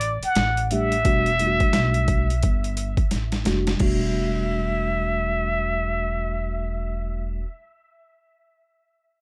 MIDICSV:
0, 0, Header, 1, 6, 480
1, 0, Start_track
1, 0, Key_signature, 1, "minor"
1, 0, Tempo, 689655
1, 729, Time_signature, 4, 2, 24, 8
1, 6410, End_track
2, 0, Start_track
2, 0, Title_t, "Muted trumpet"
2, 0, Program_c, 0, 59
2, 0, Note_on_c, 0, 74, 101
2, 135, Note_off_c, 0, 74, 0
2, 174, Note_on_c, 0, 78, 105
2, 502, Note_on_c, 0, 76, 111
2, 512, Note_off_c, 0, 78, 0
2, 2176, Note_off_c, 0, 76, 0
2, 2663, Note_on_c, 0, 76, 82
2, 5105, Note_off_c, 0, 76, 0
2, 6410, End_track
3, 0, Start_track
3, 0, Title_t, "Tine electric piano"
3, 0, Program_c, 1, 4
3, 496, Note_on_c, 1, 55, 69
3, 498, Note_on_c, 1, 57, 66
3, 501, Note_on_c, 1, 62, 69
3, 505, Note_on_c, 1, 67, 81
3, 664, Note_off_c, 1, 55, 0
3, 665, Note_off_c, 1, 57, 0
3, 666, Note_off_c, 1, 62, 0
3, 668, Note_off_c, 1, 67, 0
3, 728, Note_on_c, 1, 55, 76
3, 732, Note_on_c, 1, 57, 64
3, 735, Note_on_c, 1, 62, 65
3, 739, Note_on_c, 1, 66, 82
3, 899, Note_off_c, 1, 55, 0
3, 901, Note_off_c, 1, 57, 0
3, 903, Note_off_c, 1, 62, 0
3, 905, Note_off_c, 1, 66, 0
3, 969, Note_on_c, 1, 55, 59
3, 973, Note_on_c, 1, 57, 59
3, 976, Note_on_c, 1, 62, 59
3, 976, Note_on_c, 1, 65, 51
3, 1022, Note_on_c, 1, 66, 69
3, 1029, Note_off_c, 1, 65, 0
3, 1597, Note_off_c, 1, 55, 0
3, 1599, Note_off_c, 1, 57, 0
3, 1600, Note_off_c, 1, 62, 0
3, 1623, Note_off_c, 1, 66, 0
3, 2403, Note_on_c, 1, 55, 82
3, 2408, Note_on_c, 1, 57, 76
3, 2411, Note_on_c, 1, 62, 72
3, 2413, Note_on_c, 1, 66, 89
3, 2577, Note_off_c, 1, 55, 0
3, 2580, Note_off_c, 1, 57, 0
3, 2581, Note_off_c, 1, 62, 0
3, 2582, Note_off_c, 1, 66, 0
3, 2625, Note_on_c, 1, 55, 76
3, 2638, Note_on_c, 1, 57, 70
3, 2651, Note_on_c, 1, 62, 67
3, 2664, Note_on_c, 1, 66, 82
3, 5147, Note_off_c, 1, 55, 0
3, 5161, Note_off_c, 1, 57, 0
3, 5174, Note_off_c, 1, 62, 0
3, 5187, Note_off_c, 1, 66, 0
3, 6410, End_track
4, 0, Start_track
4, 0, Title_t, "Upright bass"
4, 0, Program_c, 2, 32
4, 0, Note_on_c, 2, 33, 88
4, 139, Note_off_c, 2, 33, 0
4, 249, Note_on_c, 2, 33, 87
4, 706, Note_off_c, 2, 33, 0
4, 732, Note_on_c, 2, 28, 90
4, 1099, Note_off_c, 2, 28, 0
4, 1220, Note_on_c, 2, 35, 84
4, 1671, Note_off_c, 2, 35, 0
4, 1695, Note_on_c, 2, 31, 83
4, 2061, Note_off_c, 2, 31, 0
4, 2177, Note_on_c, 2, 33, 72
4, 2401, Note_off_c, 2, 33, 0
4, 2414, Note_on_c, 2, 29, 78
4, 2640, Note_off_c, 2, 29, 0
4, 2648, Note_on_c, 2, 28, 84
4, 5171, Note_off_c, 2, 28, 0
4, 6410, End_track
5, 0, Start_track
5, 0, Title_t, "Muted upright bass strokes"
5, 160, Note_on_c, 9, 29, 44
5, 229, Note_off_c, 9, 29, 0
5, 1119, Note_on_c, 9, 29, 39
5, 1188, Note_off_c, 9, 29, 0
5, 2070, Note_on_c, 9, 29, 42
5, 2140, Note_off_c, 9, 29, 0
5, 6410, End_track
6, 0, Start_track
6, 0, Title_t, "Drums"
6, 6, Note_on_c, 9, 42, 73
6, 76, Note_off_c, 9, 42, 0
6, 157, Note_on_c, 9, 42, 52
6, 227, Note_off_c, 9, 42, 0
6, 247, Note_on_c, 9, 42, 85
6, 254, Note_on_c, 9, 38, 103
6, 316, Note_off_c, 9, 42, 0
6, 324, Note_off_c, 9, 38, 0
6, 399, Note_on_c, 9, 42, 47
6, 468, Note_off_c, 9, 42, 0
6, 492, Note_on_c, 9, 42, 67
6, 562, Note_off_c, 9, 42, 0
6, 639, Note_on_c, 9, 42, 58
6, 709, Note_off_c, 9, 42, 0
6, 730, Note_on_c, 9, 42, 76
6, 732, Note_on_c, 9, 36, 99
6, 799, Note_off_c, 9, 42, 0
6, 801, Note_off_c, 9, 36, 0
6, 878, Note_on_c, 9, 42, 46
6, 948, Note_off_c, 9, 42, 0
6, 970, Note_on_c, 9, 42, 58
6, 1040, Note_off_c, 9, 42, 0
6, 1114, Note_on_c, 9, 42, 46
6, 1117, Note_on_c, 9, 36, 75
6, 1184, Note_off_c, 9, 42, 0
6, 1187, Note_off_c, 9, 36, 0
6, 1205, Note_on_c, 9, 38, 94
6, 1207, Note_on_c, 9, 42, 75
6, 1275, Note_off_c, 9, 38, 0
6, 1277, Note_off_c, 9, 42, 0
6, 1352, Note_on_c, 9, 42, 44
6, 1421, Note_off_c, 9, 42, 0
6, 1446, Note_on_c, 9, 42, 64
6, 1448, Note_on_c, 9, 36, 86
6, 1516, Note_off_c, 9, 42, 0
6, 1517, Note_off_c, 9, 36, 0
6, 1602, Note_on_c, 9, 42, 47
6, 1672, Note_off_c, 9, 42, 0
6, 1688, Note_on_c, 9, 42, 74
6, 1694, Note_on_c, 9, 36, 80
6, 1758, Note_off_c, 9, 42, 0
6, 1764, Note_off_c, 9, 36, 0
6, 1839, Note_on_c, 9, 42, 49
6, 1909, Note_off_c, 9, 42, 0
6, 1927, Note_on_c, 9, 42, 72
6, 1997, Note_off_c, 9, 42, 0
6, 2069, Note_on_c, 9, 36, 79
6, 2070, Note_on_c, 9, 42, 45
6, 2139, Note_off_c, 9, 36, 0
6, 2140, Note_off_c, 9, 42, 0
6, 2164, Note_on_c, 9, 42, 77
6, 2167, Note_on_c, 9, 38, 50
6, 2234, Note_off_c, 9, 42, 0
6, 2237, Note_off_c, 9, 38, 0
6, 2310, Note_on_c, 9, 42, 45
6, 2314, Note_on_c, 9, 38, 54
6, 2380, Note_off_c, 9, 42, 0
6, 2383, Note_off_c, 9, 38, 0
6, 2404, Note_on_c, 9, 42, 63
6, 2408, Note_on_c, 9, 38, 75
6, 2473, Note_off_c, 9, 42, 0
6, 2478, Note_off_c, 9, 38, 0
6, 2553, Note_on_c, 9, 42, 52
6, 2557, Note_on_c, 9, 38, 80
6, 2623, Note_off_c, 9, 42, 0
6, 2627, Note_off_c, 9, 38, 0
6, 2642, Note_on_c, 9, 49, 71
6, 2646, Note_on_c, 9, 36, 86
6, 2712, Note_off_c, 9, 49, 0
6, 2716, Note_off_c, 9, 36, 0
6, 6410, End_track
0, 0, End_of_file